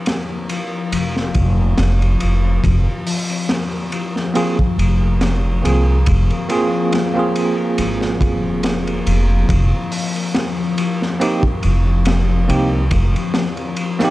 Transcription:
0.00 0.48 F3 medium
0.00 0.29 A#3 medium
0.00 1.15 C4 medium
0.06 snare loud
0.06 ride medium
0.29 1.58 A#3 medium
0.49 0.91 F3 medium
0.49 ride medium
0.92 1.31 F1 medium
0.92 1.77 F3 medium
0.92 ride medium
1.15 2.44 C4 medium
1.15 snare soft
1.34 1.78 F1 medium
1.34 kick medium
1.34 ride medium
1.58 3.73 A#3 medium
1.78 2.17 F1 medium
1.78 2.20 F3 medium
1.78 snare loud
1.78 ride medium
2.02 ride soft
2.20 2.60 F1 medium
2.20 2.63 F3 medium
2.20 ride medium
2.45 3.30 C4 medium
2.64 2.84 F1 medium
2.64 3.05 F3 medium
2.64 kick medium
2.64 ride medium
3.07 3.91 F3 medium
3.07 open hi-hat medium
3.30 4.58 C4 medium
3.30 ride soft
3.49 snare loud
3.49 ride medium
3.73 5.02 A#3 medium
3.92 4.34 F3 medium
3.92 ride medium
4.16 snare soft
4.34 5.20 F3 medium
4.34 4.55 A#3 medium
4.34 4.56 C4 medium
4.34 4.56 F4 medium
4.34 4.57 G#4 medium
4.34 ride medium
4.59 5.87 C4 medium
4.59 kick medium
4.78 5.60 F1 medium
4.78 ride medium
5.02 6.30 A#3 medium
5.21 5.63 F3 medium
5.21 snare loud
5.21 ride medium
5.62 6.02 C2 medium
5.62 6.49 F3 medium
5.62 5.94 A#3 medium
5.62 5.95 C4 medium
5.62 5.95 F4 medium
5.62 5.96 G#4 medium
5.62 ride medium
5.87 7.16 C4 medium
6.06 6.28 F1 loud
6.06 kick loud
6.06 ride medium
6.30 7.59 A#3 medium
6.30 ride soft
6.48 6.91 F3 medium
6.48 7.10 A#3 medium
6.48 7.10 C4 medium
6.48 7.11 F4 medium
6.48 7.11 G#4 medium
6.48 ride medium
6.93 7.77 F3 medium
6.93 snare loud
6.93 ride medium
7.13 9.46 A#3 medium
7.13 9.47 C4 medium
7.13 8.44 C4 medium
7.13 9.48 F4 medium
7.19 9.49 G#4 medium
7.36 ride medium
7.59 8.87 A#3 medium
7.78 8.21 G#1 medium
7.78 8.19 F3 medium
7.78 ride medium
8.01 snare medium
8.20 9.03 F1 medium
8.20 9.05 F3 medium
8.20 kick medium
8.20 ride medium
8.44 9.72 C4 medium
8.63 snare loud
8.63 ride medium
8.87 10.15 A#3 medium
8.87 ride soft
9.06 9.45 F1 medium
9.06 9.47 F3 medium
9.06 ride medium
9.49 9.70 F1 medium
9.49 10.33 F3 medium
9.49 kick loud
9.49 ride medium
9.72 11.00 C4 medium
9.92 open hi-hat medium
10.15 11.43 A#3 medium
10.15 ride soft
10.34 10.76 F3 medium
10.34 snare loud
10.34 ride medium
10.78 11.62 F3 medium
10.78 ride medium
11.01 12.29 C4 medium
11.01 snare soft
11.20 11.41 A#3 medium
11.20 11.42 C4 medium
11.20 11.42 D#4 medium
11.20 11.42 G4 medium
11.20 ride medium
11.43 12.72 A#3 medium
11.43 kick medium
11.63 12.46 F1 medium
11.63 12.05 F3 medium
11.63 ride medium
12.05 12.91 F3 medium
12.05 snare loud
12.05 ride medium
12.29 13.58 C4 medium
12.48 12.87 C2 medium
12.48 12.80 A#3 medium
12.48 12.81 C4 medium
12.48 12.81 D#4 medium
12.48 12.82 G4 medium
12.48 ride medium
12.72 14.01 A#3 medium
12.91 13.12 F1 loud
12.91 13.34 F3 medium
12.91 kick medium
12.91 ride medium
13.16 ride soft
13.34 14.10 F3 medium
13.34 snare loud
13.34 ride medium
13.57 14.10 C4 medium
13.57 ride soft
13.77 ride medium
13.99 14.10 A#3 medium
13.99 14.10 C4 medium
13.99 14.10 D#4 medium
13.99 snare medium
13.99 ride medium
14.05 14.10 G4 medium

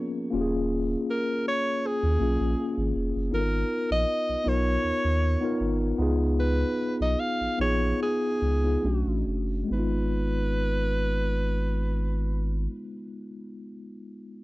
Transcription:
0.00 0.31 A#3 medium
0.00 0.35 B3 medium
0.00 0.32 C#4 medium
0.00 0.33 F4 medium
0.00 0.35 A#4 medium
0.31 0.95 D#1 loud
0.31 1.37 A#3 medium
0.31 1.37 C#4 medium
0.31 1.38 F4 medium
0.35 0.41 G4 medium
0.41 1.42 G#4 loud
1.10 1.44 A#4 medium
1.48 1.88 C#5 loud
1.87 2.97 G#4 medium
2.03 2.17 D#2 loud
2.19 2.37 B1 medium
2.19 2.98 A#3 medium
2.19 2.99 C#4 medium
2.19 3.00 F4 medium
2.19 3.00 G#4 medium
2.40 2.55 A#1 medium
2.78 2.92 G#1 loud
2.96 3.12 F1 loud
3.16 3.30 F#1 medium
3.31 3.64 G#1 loud
3.31 4.10 B3 medium
3.31 4.11 D#4 medium
3.31 4.12 F4 medium
3.31 3.41 A4 medium
3.31 3.87 A#4 loud
3.41 4.16 A#4 medium
3.91 4.05 A#1 medium
3.91 4.50 D#5 loud
4.29 4.36 B1 soft
4.44 4.77 B1 medium
4.44 5.12 B3 medium
4.44 5.12 D#4 medium
4.44 5.13 F4 medium
4.44 5.13 A#4 medium
4.48 6.01 C#5 loud
4.84 4.92 D#2 soft
5.05 5.36 D#2 medium
5.41 5.97 B3 medium
5.41 5.98 D#4 medium
5.41 6.00 F4 medium
5.41 6.00 A#4 medium
5.61 5.93 G#1 medium
5.98 6.64 C#2 loud
5.98 7.26 B3 medium
5.98 7.27 D#4 medium
5.98 7.28 F4 medium
5.98 7.28 G#4 loud
6.39 6.96 B4 loud
7.00 7.15 B1 medium
7.00 7.21 D#5 medium
7.20 7.60 F5 loud
7.41 7.48 A#1 soft
7.58 7.93 A#1 medium
7.58 8.31 B3 medium
7.58 8.32 D#4 medium
7.58 8.32 F4 medium
7.58 7.98 C#5 loud
7.62 8.33 G#4 medium
8.02 9.24 G#4 medium
8.42 8.77 C#2 medium
8.63 8.83 B3 medium
8.63 8.84 D#4 medium
8.63 8.84 F4 medium
8.63 8.85 G#4 medium
8.83 9.03 B1 loud
8.83 9.54 A3 medium
8.83 9.54 C#4 medium
8.83 9.55 D4 medium
8.83 9.56 F#4 medium
9.07 9.23 A1 loud
9.27 9.63 F#1 medium
9.64 12.60 G#3 medium
9.68 12.67 G#1 loud
9.68 12.65 B3 medium
9.73 12.71 D#4 medium
9.73 12.69 B4 loud
9.78 12.75 F4 medium

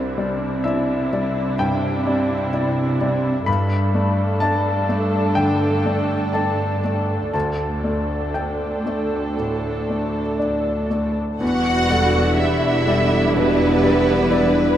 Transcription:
0.00 1.56 C2 soft
0.00 3.43 C3 soft
0.00 3.43 D4 soft
0.00 3.43 E4 soft
0.00 0.61 C5 soft
0.18 0.62 G3 soft
0.18 0.62 D5 soft
0.64 1.09 E4 soft
0.64 1.09 D5 soft
0.64 1.55 E5 soft
1.13 1.56 G3 soft
1.13 1.56 D5 soft
1.59 2.34 G2 soft
1.59 3.43 G5 medium
2.07 2.49 G3 soft
2.07 2.49 D5 soft
2.53 2.96 E4 soft
2.53 2.96 D5 soft
3.01 3.44 G3 soft
3.01 3.44 D5 soft
3.46 7.30 G2 soft
3.46 5.32 G2 soft
3.46 7.30 D4 soft
3.46 7.30 A4 soft
3.46 4.37 B5 medium
3.94 4.37 A3 soft
3.94 4.37 D5 soft
4.40 4.85 D4 soft
4.40 4.85 D5 soft
4.40 5.31 A5 medium
4.89 5.32 A3 soft
4.89 5.32 D5 soft
5.35 6.14 D3 soft
5.35 6.29 G5 medium
5.85 6.30 A3 soft
5.85 6.30 D5 soft
6.33 6.80 D4 soft
6.33 6.80 D5 soft
6.33 7.30 A5 soft
6.84 7.30 A3 soft
6.84 7.31 D5 soft
7.33 11.16 D2 soft
7.33 9.35 D2 soft
7.33 11.17 D4 soft
7.33 11.17 A4 soft
7.33 8.31 A5 soft
7.84 8.31 A3 soft
7.84 8.31 D5 soft
8.34 8.82 D4 soft
8.34 8.82 D5 soft
8.34 10.86 G5 soft
8.86 9.34 A3 soft
8.86 9.35 D5 soft
9.38 10.20 A2 soft
9.89 10.36 A3 soft
9.89 10.36 D5 soft
10.39 10.86 D4 soft
10.39 10.87 D5 soft
10.90 11.37 A3 soft
10.90 11.37 D5 soft
11.40 14.77 E1 soft
11.40 13.32 E2 soft
11.40 14.77 E2 soft
11.40 14.77 G3 soft
11.40 14.77 D4 soft
11.40 14.77 E4 soft
11.40 12.37 F#4 soft
11.40 11.87 B4 soft
11.40 12.35 F#5 medium
11.90 12.35 G3 soft
11.90 12.40 A4 soft
11.90 12.35 D5 soft
12.38 12.84 E4 soft
12.38 13.36 E4 soft
12.38 12.88 G4 soft
12.38 12.84 D5 soft
12.38 13.36 E5 soft
12.86 13.32 G3 soft
12.86 13.36 A4 soft
12.86 13.32 D5 soft
13.34 14.12 B2 soft
13.34 14.77 B3 medium
13.34 14.33 G4 soft
13.34 14.77 B4 medium
13.83 14.28 G3 soft
13.83 14.28 D5 soft
14.31 14.76 E4 soft
14.31 14.77 B4 soft
14.31 14.76 D5 soft

